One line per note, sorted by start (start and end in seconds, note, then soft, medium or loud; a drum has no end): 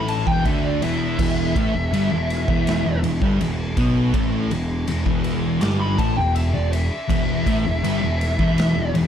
0.00 0.23 A1 loud
0.00 0.25 A2 loud
0.00 0.26 A3 loud
0.08 0.26 A5 loud
0.08 ride medium
0.26 0.44 E1 medium
0.26 0.44 E2 medium
0.26 0.44 E3 medium
0.26 0.45 G5 medium
0.26 kick loud
0.45 0.79 D2 loud
0.45 0.81 D3 medium
0.45 0.81 D4 loud
0.45 0.63 E5 loud
0.45 kick loud
0.45 ride medium
0.64 0.82 D5 medium
0.81 1.17 E1 loud
0.81 1.17 E2 medium
0.81 1.18 E3 medium
0.81 2.99 E5 loud
0.81 ride medium
1.19 1.53 E1 loud
1.19 1.54 E2 loud
1.19 1.55 E3 loud
1.19 kick loud
1.19 crash loud
1.56 1.73 A1 medium
1.56 1.73 A2 medium
1.56 1.73 A3 loud
1.56 kick loud
1.56 ride medium
1.74 1.92 E1 medium
1.74 1.92 E2 medium
1.93 2.10 G1 loud
1.93 2.10 G2 loud
1.93 2.10 G3 loud
1.93 ride loud
2.11 2.46 E1 medium
2.11 2.40 E2 medium
2.30 snare soft
2.30 ride medium
2.48 2.82 E1 medium
2.48 2.84 E2 medium
2.48 2.84 E3 loud
2.48 kick loud
2.67 snare loud
2.67 ride loud
2.85 3.02 E1 medium
2.85 3.02 E2 medium
3.03 3.20 E1 medium
3.03 3.21 E2 medium
3.03 ride medium
3.21 3.39 G1 medium
3.21 3.39 G2 medium
3.21 3.39 G3 medium
3.21 kick loud
3.40 3.74 E1 medium
3.40 3.69 E2 medium
3.40 ride loud
3.77 4.11 B1 medium
3.77 4.13 B2 medium
3.77 4.13 B3 medium
3.77 kick loud
3.77 ride medium
4.14 4.48 A1 loud
4.14 4.50 A2 loud
4.14 4.50 A3 loud
4.14 kick loud
4.14 ride loud
4.50 4.85 E1 medium
4.50 4.80 E2 medium
4.50 ride medium
4.87 5.05 E1 medium
4.87 5.05 E2 medium
4.87 ride loud
5.06 5.58 E1 loud
5.06 5.60 E2 medium
5.06 5.61 E3 loud
5.06 kick loud
5.24 ride medium
5.61 5.96 G1 loud
5.61 5.97 G2 loud
5.61 5.98 G3 loud
5.61 5.79 D6 loud
5.61 snare loud
5.61 ride loud
5.80 5.98 B5 medium
5.98 6.16 A1 loud
5.98 6.16 A2 loud
5.98 6.16 A3 loud
5.98 6.17 A5 medium
5.98 kick loud
5.98 ride medium
6.17 6.51 E1 medium
6.17 6.46 E2 medium
6.17 6.35 G5 medium
6.35 6.53 E5 medium
6.35 ride loud
6.53 6.88 E1 medium
6.53 6.83 E2 medium
6.53 6.71 D5 medium
6.72 8.90 E5 loud
6.72 ride medium
7.08 7.44 E1 loud
7.08 7.44 E2 loud
7.08 7.45 E3 loud
7.08 kick loud
7.08 ride loud
7.46 7.64 A1 loud
7.46 7.64 A2 medium
7.46 7.64 A3 loud
7.46 kick loud
7.46 ride medium
7.64 7.82 E1 medium
7.64 7.83 E2 medium
7.83 8.00 G1 medium
7.83 8.01 G2 loud
7.83 8.01 G3 loud
7.83 ride loud
8.02 8.36 E1 medium
8.02 8.31 E2 medium
8.21 snare soft
8.21 ride medium
8.39 8.73 E1 loud
8.39 8.74 E2 medium
8.39 8.75 E3 loud
8.39 kick loud
8.58 snare loud
8.58 ride loud
8.75 8.93 E1 medium
8.75 8.93 E2 medium
8.94 9.07 E1 medium
8.94 9.07 E2 medium
8.94 ride medium